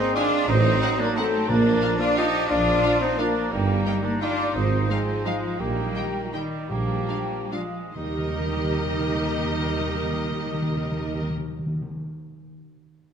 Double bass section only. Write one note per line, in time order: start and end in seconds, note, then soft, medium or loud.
0.48 0.76 A1 medium
1.50 1.77 A#1 medium
2.50 2.78 A#1 medium
3.53 3.80 G1 medium
4.55 4.84 G#1 medium
5.60 5.89 A#1 medium
6.70 7.02 A#1 soft
7.95 11.28 D#2 soft